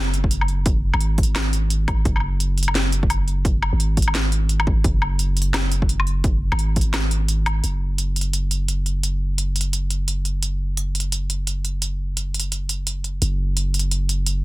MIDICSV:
0, 0, Header, 1, 3, 480
1, 0, Start_track
1, 0, Tempo, 348837
1, 907, Time_signature, 4, 2, 24, 8
1, 19878, End_track
2, 0, Start_track
2, 0, Title_t, "808-style bass"
2, 0, Program_c, 0, 38
2, 0, Note_on_c, 0, 30, 104
2, 1271, Note_off_c, 0, 30, 0
2, 1290, Note_on_c, 0, 32, 87
2, 2815, Note_off_c, 0, 32, 0
2, 2826, Note_on_c, 0, 30, 96
2, 5111, Note_off_c, 0, 30, 0
2, 5128, Note_on_c, 0, 32, 88
2, 6654, Note_off_c, 0, 32, 0
2, 6665, Note_on_c, 0, 30, 99
2, 8951, Note_off_c, 0, 30, 0
2, 8971, Note_on_c, 0, 32, 88
2, 10495, Note_off_c, 0, 32, 0
2, 10506, Note_on_c, 0, 30, 85
2, 18167, Note_off_c, 0, 30, 0
2, 18187, Note_on_c, 0, 30, 89
2, 19878, Note_off_c, 0, 30, 0
2, 19878, End_track
3, 0, Start_track
3, 0, Title_t, "Drums"
3, 187, Note_on_c, 9, 42, 65
3, 325, Note_off_c, 9, 42, 0
3, 328, Note_on_c, 9, 36, 62
3, 425, Note_on_c, 9, 42, 80
3, 466, Note_off_c, 9, 36, 0
3, 563, Note_off_c, 9, 42, 0
3, 569, Note_on_c, 9, 77, 49
3, 664, Note_on_c, 9, 42, 36
3, 707, Note_off_c, 9, 77, 0
3, 802, Note_off_c, 9, 42, 0
3, 904, Note_on_c, 9, 42, 72
3, 905, Note_on_c, 9, 36, 118
3, 1042, Note_off_c, 9, 42, 0
3, 1043, Note_off_c, 9, 36, 0
3, 1287, Note_on_c, 9, 77, 72
3, 1383, Note_on_c, 9, 42, 72
3, 1425, Note_off_c, 9, 77, 0
3, 1521, Note_off_c, 9, 42, 0
3, 1623, Note_on_c, 9, 42, 49
3, 1625, Note_on_c, 9, 36, 62
3, 1696, Note_off_c, 9, 42, 0
3, 1696, Note_on_c, 9, 42, 64
3, 1763, Note_off_c, 9, 36, 0
3, 1834, Note_off_c, 9, 42, 0
3, 1865, Note_on_c, 9, 38, 116
3, 1865, Note_on_c, 9, 42, 77
3, 1865, Note_on_c, 9, 77, 48
3, 2003, Note_off_c, 9, 38, 0
3, 2003, Note_off_c, 9, 42, 0
3, 2003, Note_off_c, 9, 77, 0
3, 2105, Note_on_c, 9, 42, 60
3, 2243, Note_off_c, 9, 42, 0
3, 2345, Note_on_c, 9, 42, 76
3, 2482, Note_off_c, 9, 42, 0
3, 2585, Note_on_c, 9, 36, 107
3, 2585, Note_on_c, 9, 42, 34
3, 2585, Note_on_c, 9, 77, 70
3, 2723, Note_off_c, 9, 36, 0
3, 2723, Note_off_c, 9, 42, 0
3, 2723, Note_off_c, 9, 77, 0
3, 2826, Note_on_c, 9, 36, 113
3, 2826, Note_on_c, 9, 42, 74
3, 2963, Note_off_c, 9, 36, 0
3, 2963, Note_off_c, 9, 42, 0
3, 2970, Note_on_c, 9, 77, 44
3, 2983, Note_off_c, 9, 77, 0
3, 2983, Note_on_c, 9, 77, 38
3, 3031, Note_off_c, 9, 77, 0
3, 3031, Note_on_c, 9, 77, 31
3, 3168, Note_off_c, 9, 77, 0
3, 3305, Note_on_c, 9, 42, 73
3, 3443, Note_off_c, 9, 42, 0
3, 3544, Note_on_c, 9, 42, 47
3, 3615, Note_off_c, 9, 42, 0
3, 3615, Note_on_c, 9, 42, 64
3, 3687, Note_on_c, 9, 77, 75
3, 3753, Note_off_c, 9, 42, 0
3, 3785, Note_on_c, 9, 38, 114
3, 3785, Note_on_c, 9, 42, 76
3, 3824, Note_off_c, 9, 77, 0
3, 3923, Note_off_c, 9, 38, 0
3, 3923, Note_off_c, 9, 42, 0
3, 4024, Note_on_c, 9, 42, 58
3, 4162, Note_off_c, 9, 42, 0
3, 4168, Note_on_c, 9, 36, 60
3, 4266, Note_on_c, 9, 42, 75
3, 4266, Note_on_c, 9, 77, 48
3, 4306, Note_off_c, 9, 36, 0
3, 4404, Note_off_c, 9, 42, 0
3, 4404, Note_off_c, 9, 77, 0
3, 4508, Note_on_c, 9, 42, 34
3, 4646, Note_off_c, 9, 42, 0
3, 4746, Note_on_c, 9, 36, 107
3, 4748, Note_on_c, 9, 42, 71
3, 4883, Note_off_c, 9, 36, 0
3, 4885, Note_off_c, 9, 42, 0
3, 4988, Note_on_c, 9, 77, 79
3, 5125, Note_off_c, 9, 77, 0
3, 5228, Note_on_c, 9, 42, 74
3, 5365, Note_off_c, 9, 42, 0
3, 5465, Note_on_c, 9, 42, 50
3, 5466, Note_on_c, 9, 36, 56
3, 5536, Note_off_c, 9, 42, 0
3, 5536, Note_on_c, 9, 42, 63
3, 5603, Note_off_c, 9, 36, 0
3, 5609, Note_on_c, 9, 77, 51
3, 5674, Note_off_c, 9, 42, 0
3, 5707, Note_on_c, 9, 38, 112
3, 5707, Note_on_c, 9, 42, 74
3, 5746, Note_off_c, 9, 77, 0
3, 5844, Note_off_c, 9, 38, 0
3, 5844, Note_off_c, 9, 42, 0
3, 5945, Note_on_c, 9, 42, 58
3, 6083, Note_off_c, 9, 42, 0
3, 6183, Note_on_c, 9, 42, 76
3, 6321, Note_off_c, 9, 42, 0
3, 6325, Note_on_c, 9, 77, 73
3, 6425, Note_on_c, 9, 36, 95
3, 6463, Note_off_c, 9, 77, 0
3, 6563, Note_off_c, 9, 36, 0
3, 6665, Note_on_c, 9, 36, 109
3, 6665, Note_on_c, 9, 42, 73
3, 6802, Note_off_c, 9, 36, 0
3, 6803, Note_off_c, 9, 42, 0
3, 6905, Note_on_c, 9, 77, 54
3, 7043, Note_off_c, 9, 77, 0
3, 7143, Note_on_c, 9, 42, 72
3, 7281, Note_off_c, 9, 42, 0
3, 7384, Note_on_c, 9, 42, 49
3, 7454, Note_off_c, 9, 42, 0
3, 7454, Note_on_c, 9, 42, 63
3, 7592, Note_off_c, 9, 42, 0
3, 7623, Note_on_c, 9, 38, 109
3, 7623, Note_on_c, 9, 42, 75
3, 7623, Note_on_c, 9, 77, 79
3, 7761, Note_off_c, 9, 38, 0
3, 7761, Note_off_c, 9, 42, 0
3, 7761, Note_off_c, 9, 77, 0
3, 7865, Note_on_c, 9, 42, 60
3, 8002, Note_off_c, 9, 42, 0
3, 8009, Note_on_c, 9, 36, 56
3, 8107, Note_on_c, 9, 42, 77
3, 8147, Note_off_c, 9, 36, 0
3, 8245, Note_off_c, 9, 42, 0
3, 8251, Note_on_c, 9, 77, 54
3, 8350, Note_on_c, 9, 42, 36
3, 8389, Note_off_c, 9, 77, 0
3, 8487, Note_off_c, 9, 42, 0
3, 8587, Note_on_c, 9, 36, 113
3, 8587, Note_on_c, 9, 42, 76
3, 8724, Note_off_c, 9, 42, 0
3, 8725, Note_off_c, 9, 36, 0
3, 8970, Note_on_c, 9, 77, 86
3, 9065, Note_on_c, 9, 42, 76
3, 9107, Note_off_c, 9, 77, 0
3, 9203, Note_off_c, 9, 42, 0
3, 9304, Note_on_c, 9, 42, 49
3, 9307, Note_on_c, 9, 36, 57
3, 9374, Note_off_c, 9, 42, 0
3, 9374, Note_on_c, 9, 42, 65
3, 9445, Note_off_c, 9, 36, 0
3, 9511, Note_off_c, 9, 42, 0
3, 9544, Note_on_c, 9, 38, 113
3, 9544, Note_on_c, 9, 42, 78
3, 9544, Note_on_c, 9, 77, 53
3, 9682, Note_off_c, 9, 38, 0
3, 9682, Note_off_c, 9, 42, 0
3, 9682, Note_off_c, 9, 77, 0
3, 9785, Note_on_c, 9, 42, 63
3, 9922, Note_off_c, 9, 42, 0
3, 10024, Note_on_c, 9, 42, 81
3, 10162, Note_off_c, 9, 42, 0
3, 10268, Note_on_c, 9, 42, 36
3, 10268, Note_on_c, 9, 77, 83
3, 10405, Note_off_c, 9, 42, 0
3, 10405, Note_off_c, 9, 77, 0
3, 10508, Note_on_c, 9, 42, 73
3, 10645, Note_off_c, 9, 42, 0
3, 10986, Note_on_c, 9, 42, 72
3, 11123, Note_off_c, 9, 42, 0
3, 11231, Note_on_c, 9, 42, 47
3, 11301, Note_off_c, 9, 42, 0
3, 11301, Note_on_c, 9, 42, 64
3, 11439, Note_off_c, 9, 42, 0
3, 11468, Note_on_c, 9, 42, 73
3, 11606, Note_off_c, 9, 42, 0
3, 11710, Note_on_c, 9, 42, 58
3, 11848, Note_off_c, 9, 42, 0
3, 11950, Note_on_c, 9, 42, 73
3, 12088, Note_off_c, 9, 42, 0
3, 12192, Note_on_c, 9, 42, 34
3, 12329, Note_off_c, 9, 42, 0
3, 12431, Note_on_c, 9, 42, 70
3, 12569, Note_off_c, 9, 42, 0
3, 12909, Note_on_c, 9, 42, 71
3, 13047, Note_off_c, 9, 42, 0
3, 13150, Note_on_c, 9, 42, 49
3, 13220, Note_off_c, 9, 42, 0
3, 13220, Note_on_c, 9, 42, 65
3, 13358, Note_off_c, 9, 42, 0
3, 13391, Note_on_c, 9, 42, 74
3, 13528, Note_off_c, 9, 42, 0
3, 13629, Note_on_c, 9, 42, 61
3, 13766, Note_off_c, 9, 42, 0
3, 13868, Note_on_c, 9, 42, 74
3, 14005, Note_off_c, 9, 42, 0
3, 14106, Note_on_c, 9, 42, 34
3, 14243, Note_off_c, 9, 42, 0
3, 14345, Note_on_c, 9, 42, 70
3, 14483, Note_off_c, 9, 42, 0
3, 14824, Note_on_c, 9, 42, 70
3, 14962, Note_off_c, 9, 42, 0
3, 15067, Note_on_c, 9, 42, 49
3, 15137, Note_off_c, 9, 42, 0
3, 15137, Note_on_c, 9, 42, 61
3, 15274, Note_off_c, 9, 42, 0
3, 15305, Note_on_c, 9, 42, 72
3, 15442, Note_off_c, 9, 42, 0
3, 15546, Note_on_c, 9, 42, 59
3, 15684, Note_off_c, 9, 42, 0
3, 15785, Note_on_c, 9, 42, 71
3, 15923, Note_off_c, 9, 42, 0
3, 16024, Note_on_c, 9, 42, 35
3, 16162, Note_off_c, 9, 42, 0
3, 16263, Note_on_c, 9, 42, 68
3, 16401, Note_off_c, 9, 42, 0
3, 16744, Note_on_c, 9, 42, 67
3, 16882, Note_off_c, 9, 42, 0
3, 16985, Note_on_c, 9, 42, 46
3, 17056, Note_off_c, 9, 42, 0
3, 17056, Note_on_c, 9, 42, 61
3, 17194, Note_off_c, 9, 42, 0
3, 17226, Note_on_c, 9, 42, 69
3, 17363, Note_off_c, 9, 42, 0
3, 17465, Note_on_c, 9, 42, 57
3, 17603, Note_off_c, 9, 42, 0
3, 17706, Note_on_c, 9, 42, 71
3, 17843, Note_off_c, 9, 42, 0
3, 17947, Note_on_c, 9, 42, 31
3, 18084, Note_off_c, 9, 42, 0
3, 18188, Note_on_c, 9, 42, 66
3, 18325, Note_off_c, 9, 42, 0
3, 18668, Note_on_c, 9, 42, 67
3, 18806, Note_off_c, 9, 42, 0
3, 18909, Note_on_c, 9, 42, 43
3, 18981, Note_off_c, 9, 42, 0
3, 18981, Note_on_c, 9, 42, 55
3, 19118, Note_off_c, 9, 42, 0
3, 19146, Note_on_c, 9, 42, 65
3, 19284, Note_off_c, 9, 42, 0
3, 19391, Note_on_c, 9, 42, 54
3, 19528, Note_off_c, 9, 42, 0
3, 19628, Note_on_c, 9, 42, 66
3, 19766, Note_off_c, 9, 42, 0
3, 19878, End_track
0, 0, End_of_file